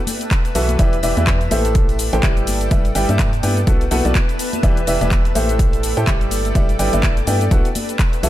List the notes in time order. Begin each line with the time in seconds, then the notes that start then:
Already playing: B4 E5 A5
0.07 open hi-hat, tambourine, high conga, shaker
0.21 closed hi-hat, tambourine, shaker
0.31 kick, clap, closed hi-hat, tambourine, shaker
0.45 closed hi-hat, tambourine, shaker
0.55 B1 E3 E4 F#4 A4 B4 E5, open hi-hat, tambourine, shaker
0.68 closed hi-hat, tambourine, high conga, shaker
0.79 E1 E3 E4 G4 A4 B4 D5 E5, kick, closed hi-hat, tambourine, shaker
0.93 closed hi-hat, shaker
1.03 E1 E3 E4 G4 B4 D5 E5, open hi-hat, tambourine, shaker
1.13 D5 G5
1.17 E2 E3 E4 G4 B4 D5 E5, closed hi-hat, tambourine, high conga, shaker
1.27 kick, clap, closed hi-hat, shaker
1.41 closed hi-hat, tambourine, shaker
1.51 A1 A3 E4 G4 A4 C5 E5, open hi-hat, tambourine, high conga, shaker
1.65 closed hi-hat, tambourine, shaker
1.75 kick, closed hi-hat, shaker
1.89 closed hi-hat, tambourine, shaker
1.98 open hi-hat, tambourine, shaker
2.13 A1 A3 E4 G4 A4 C5 G5, closed hi-hat, tambourine, shaker
2.23 G1 G3 E4 G4 B4 D5 E5, kick, clap, closed hi-hat, tambourine, shaker
2.37 closed hi-hat, shaker
2.47 B4, open hi-hat, tambourine, high conga, shaker
2.61 closed hi-hat, tambourine, shaker
2.71 G1 G3 E4 G4 B4 D5 E5, kick, closed hi-hat, tambourine, shaker
2.85 closed hi-hat, tambourine, shaker
2.95 G1 G3 E4 G4 B4 D5 G5, open hi-hat, tambourine, shaker
3.02 E5 A5
3.09 G2 G3 E4 G4 B4 D5 E5, closed hi-hat, tambourine, high conga, shaker
3.19 kick, clap, closed hi-hat, tambourine, shaker
3.33 closed hi-hat, tambourine, shaker
3.43 G2 B3 E4 G4 B4 D5 G5, open hi-hat, tambourine, high conga, shaker
3.57 closed hi-hat, tambourine, shaker
3.67 B1 B3 E4 F#4 A4 B4 F#5, kick, closed hi-hat, tambourine, shaker
3.81 closed hi-hat, tambourine, shaker
3.91 B1 B3 E4 F#4 A4 B4 F#5, open hi-hat, tambourine, high conga, shaker
4.05 B1 B3 E4 F#4 A4 B4 D5, closed hi-hat, tambourine, shaker
4.15 kick, clap, closed hi-hat, tambourine, shaker
4.29 closed hi-hat, tambourine, shaker
4.39 open hi-hat, tambourine, shaker
4.53 closed hi-hat, tambourine, high conga, shaker
4.63 E1 E3 E4 G4 A4 B4 D5 E5, kick, closed hi-hat, tambourine, shaker
4.77 closed hi-hat, shaker
4.87 E1 E3 E4 G4 B4 D5 E5, open hi-hat, tambourine, shaker
4.97 D5 G5
5.01 E1 E3 E4 G4 B4 D5 E5, closed hi-hat, tambourine, high conga, shaker
5.11 kick, clap, closed hi-hat, tambourine, shaker
5.25 closed hi-hat, tambourine, shaker
5.35 A1 A3 E4 G4 A4 C5 E5, open hi-hat, tambourine, high conga, shaker
5.49 closed hi-hat, tambourine, shaker
5.59 kick, closed hi-hat, tambourine, shaker
5.73 closed hi-hat, tambourine, shaker
5.83 open hi-hat, tambourine, shaker
5.97 A2 A3 E4 G4 A4 C5 G5, closed hi-hat, tambourine, shaker
6.07 G1 G3 E4 E5, kick, clap, closed hi-hat, shaker
6.21 closed hi-hat, shaker
6.31 B4, open hi-hat, tambourine, high conga, shaker
6.45 closed hi-hat, tambourine, shaker
6.55 G1 G3 E4 G4 B4 D5 E5, kick, closed hi-hat, tambourine, shaker
6.69 closed hi-hat, tambourine, shaker
6.79 G1 G3 E4 G4 B4 D5 G5, open hi-hat, tambourine, shaker
6.86 E5 A5
6.93 G1 G3 E4 G4 B4 D5 E5, closed hi-hat, tambourine, high conga, shaker
7.03 kick, clap, closed hi-hat, shaker
7.17 closed hi-hat, tambourine, shaker
7.27 G2 B3 E4 G4 B4 D5 G5, open hi-hat, tambourine, high conga, shaker
7.41 closed hi-hat, tambourine, shaker
7.51 B1 B3 E4 F#4 A4 B4 F#5, kick, closed hi-hat, tambourine, shaker
7.65 closed hi-hat, tambourine, shaker
7.75 open hi-hat, tambourine, high conga, shaker
7.88 closed hi-hat, tambourine, shaker
7.99 kick, clap, closed hi-hat, tambourine, shaker
8.13 closed hi-hat, tambourine, shaker
8.23 B1 E3 E4 F#4 A4 B4 E5, open hi-hat, tambourine, shaker